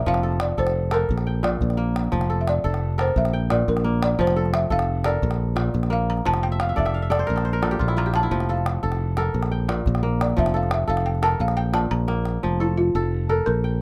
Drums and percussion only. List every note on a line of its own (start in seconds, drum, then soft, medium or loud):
0.06 calabash thump medium
0.14 calabash click medium
0.23 calabash click soft
0.32 calabash click soft
0.40 calabash click medium
0.57 calabash thump medium
0.67 calabash click medium
0.91 calabash click medium
1.09 calabash thump medium
1.18 calabash click soft
1.44 calabash click medium
1.61 calabash thump medium
1.70 calabash click soft
1.96 calabash click medium
2.04 calabash click soft
2.13 calabash thump medium
2.21 calabash click soft
2.48 calabash click medium
2.65 calabash thump medium
2.74 calabash click soft
2.99 calabash click medium
3.08 calabash click soft
3.16 calabash thump medium
3.25 calabash click medium
3.50 calabash click medium
3.68 calabash thump medium
3.77 calabash click soft
4.03 calabash click medium
4.19 calabash thump medium
4.27 calabash click medium
4.46 calabash click soft
4.54 calabash click medium
4.70 calabash thump medium
4.79 calabash click medium
5.04 calabash click medium
5.22 calabash thump medium
5.31 calabash click medium
5.57 calabash click medium
5.74 calabash thump medium
5.83 calabash click soft
6.17 calabash click soft
6.25 calabash thump medium
6.34 calabash click soft
6.60 calabash click medium
6.77 calabash thump medium
6.86 calabash click soft
7.12 calabash click medium
7.29 calabash thump medium
7.38 calabash click soft
7.63 calabash click medium
7.80 calabash thump medium
7.88 calabash click soft
8.14 calabash click medium
8.23 calabash click soft
8.32 calabash thump medium
8.40 calabash click soft
8.49 calabash click soft
8.57 calabash click soft
8.66 calabash click medium
8.83 calabash thump medium
8.92 calabash click soft
9.17 calabash click medium
9.34 calabash thump medium
9.43 calabash click soft
9.69 calabash click medium
9.86 calabash thump medium
9.95 calabash click medium
10.21 calabash click medium
10.30 calabash click soft
10.38 calabash thump medium
10.38 calabash click soft
10.46 calabash click medium
10.55 calabash click soft
10.63 calabash click soft
10.71 calabash click medium
10.88 calabash thump medium
10.97 calabash click medium
11.15 calabash click soft
11.23 calabash click medium
11.32 calabash click soft
11.40 calabash thump medium
11.48 calabash click soft
11.57 calabash click soft
11.74 calabash click medium
11.91 calabash thump soft
12.08 calabash click soft
12.25 calabash click soft